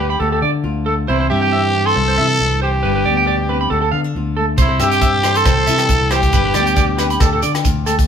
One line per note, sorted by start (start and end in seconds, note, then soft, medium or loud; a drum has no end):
0.00 0.17 D2 medium
0.00 0.18 G2 medium
0.00 0.19 D3 medium
0.00 0.19 B3 medium
0.00 0.19 D4 medium
0.00 0.42 G4 medium
0.10 0.17 B5 medium
0.20 0.41 D2 loud
0.20 1.08 D3 medium
0.20 0.85 A3 medium
0.20 0.42 D4 medium
0.20 0.63 F4 medium
0.20 0.28 A4 medium
0.32 0.39 A4 medium
0.42 0.63 D3 medium
0.42 1.06 D4 medium
0.42 0.50 D5 medium
0.64 1.06 D2 medium
0.64 1.05 F4 medium
0.86 1.05 A3 medium
0.86 0.94 A4 medium
1.08 1.29 C2 medium
1.08 1.74 C3 medium
1.08 1.73 E3 medium
1.08 1.31 G3 medium
1.08 1.52 C4 medium
1.08 1.29 E4 medium
1.08 1.16 C5 medium
1.20 1.27 C5 medium
1.30 1.93 G2 medium
1.30 2.40 G3 medium
1.30 1.88 G4 loud
1.30 1.38 E5 medium
1.42 1.49 G5 medium
1.52 2.81 C4 medium
1.52 1.60 E5 medium
1.75 2.61 E3 medium
1.86 2.62 A4 loud
1.86 1.93 C6 medium
1.96 2.17 C2 loud
1.96 2.81 G2 medium
1.96 muted clean electric guitar stroke medium
2.08 2.14 C5 medium
2.18 2.39 C3 medium
2.18 2.85 E4 medium
2.18 2.26 E5 medium
2.40 2.81 C2 medium
2.40 3.06 G3 medium
2.62 2.81 E3 medium
2.62 3.90 G4 medium
2.62 2.70 C5 medium
2.83 3.04 G1 medium
2.83 3.69 G2 medium
2.83 3.69 D4 medium
2.83 2.91 B4 medium
2.96 3.02 B4 medium
3.05 3.68 D2 medium
3.05 3.69 B3 medium
3.05 3.13 D5 medium
3.17 3.24 G5 medium
3.27 3.48 B2 medium
3.27 3.35 D5 medium
3.49 3.71 C3 medium
3.49 3.57 B4 medium
3.61 3.68 B5 medium
3.70 3.92 D2 loud
3.70 4.59 D3 medium
3.70 4.15 F4 medium
3.70 3.78 A4 medium
3.82 3.89 A4 medium
3.92 4.13 D3 medium
3.92 4.04 B3 medium
3.92 4.00 F5 medium
4.04 4.58 D4 soft
4.15 4.56 D2 medium
4.15 4.57 F4 medium
4.37 4.57 A3 medium
4.37 4.44 A4 medium
4.58 4.79 C2 medium
4.58 5.24 C3 medium
4.58 5.02 C4 medium
4.58 4.80 E4 medium
4.58 4.66 C5 medium
4.58 kick medium
4.58 closed hi-hat soft
4.58 shekere medium
4.69 4.76 C5 medium
4.80 5.42 G2 medium
4.80 5.90 G3 medium
4.80 5.38 G4 loud
4.80 4.88 E5 medium
4.80 cross-stick medium
4.80 closed hi-hat medium
4.80 low agogo medium
4.80 shekere medium
4.91 4.98 G5 medium
4.91 closed hi-hat medium
5.01 6.32 C4 medium
5.01 5.10 E5 medium
5.01 kick medium
5.01 closed hi-hat soft
5.01 shekere medium
5.23 6.10 E3 medium
5.23 5.32 C5 medium
5.23 cross-stick medium
5.23 closed hi-hat soft
5.23 low agogo medium
5.23 shekere medium
5.35 6.13 A4 loud
5.35 5.42 C6 medium
5.35 closed hi-hat soft
5.45 5.67 C2 loud
5.45 6.31 G2 medium
5.45 5.53 C5 medium
5.45 kick medium
5.45 cross-stick medium
5.45 closed hi-hat soft
5.45 low agogo medium
5.45 shekere medium
5.57 5.64 C5 medium
5.67 5.88 C3 medium
5.67 6.34 E4 medium
5.67 5.75 E5 medium
5.67 closed hi-hat soft
5.67 shekere medium
5.78 cross-stick medium
5.78 closed hi-hat soft
5.78 low agogo medium
5.89 6.31 C2 medium
5.89 6.56 G3 medium
5.89 kick medium
5.89 closed hi-hat medium
5.89 shekere medium
6.11 6.31 E3 medium
6.11 7.43 G4 medium
6.11 6.19 C5 medium
6.11 cross-stick medium
6.11 closed hi-hat soft
6.11 low agogo medium
6.11 shekere medium
6.23 kick medium
6.23 closed hi-hat soft
6.33 6.54 G1 medium
6.33 7.19 G2 medium
6.33 7.19 D4 medium
6.33 6.41 B4 medium
6.33 kick medium
6.33 closed hi-hat soft
6.33 shekere loud
6.45 6.52 B4 medium
6.54 7.18 D2 medium
6.54 7.20 B3 medium
6.54 6.63 D5 medium
6.54 cross-stick medium
6.54 closed hi-hat soft
6.54 low agogo medium
6.54 shekere medium
6.66 6.73 G5 medium
6.66 closed hi-hat soft
6.76 6.99 B2 medium
6.76 6.85 D5 medium
6.76 kick medium
6.76 closed hi-hat soft
6.76 shekere medium
6.98 7.21 C3 medium
6.98 7.07 B4 medium
6.98 cross-stick medium
6.98 closed hi-hat soft
6.98 low agogo medium
6.98 shekere medium
7.10 7.18 B5 medium
7.10 closed hi-hat soft
7.20 7.42 D2 loud
7.20 8.07 D3 medium
7.20 7.65 F4 medium
7.20 7.29 A4 medium
7.20 kick medium
7.20 cross-stick medium
7.20 closed hi-hat medium
7.20 low agogo medium
7.20 shekere medium
7.33 7.40 A4 medium
7.42 7.64 D3 medium
7.42 8.07 D4 medium
7.42 7.51 D5 medium
7.42 closed hi-hat medium
7.42 shekere medium
7.55 cross-stick medium
7.55 closed hi-hat medium
7.55 low agogo medium
7.64 8.07 D2 medium
7.64 8.07 F4 medium
7.64 kick medium
7.64 closed hi-hat medium
7.64 shekere medium
7.86 8.07 A3 medium
7.86 7.95 A4 medium
7.86 closed hi-hat soft
7.86 low agogo medium
7.86 shekere medium
7.99 kick medium
7.99 closed hi-hat medium